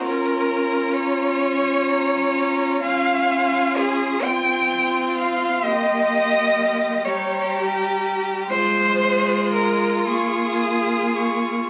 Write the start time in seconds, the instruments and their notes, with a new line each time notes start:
0.04 viola C#4, violin F4 A#5, cello A#4
0.94 cello C#5
1.40 violin G#5
1.88 violin A#5
2.34 violin A#5
2.83 viola C#4, violin F4 G#5, cello F5
3.77 cello G#4
4.24 viola C4, violin F4 C6, cello G5
5.18 cello F5
5.65 viola A#3, violin G4, cello D#5
7.05 viola G3, violin G4 A#5, cello C#5
8.48 viola G#3, violin F4 C6, cello C5
9.54 cello A#4
10.06 viola A#3, cello G#4, violin C#6
10.59 violin D#6
11.16 violin C#6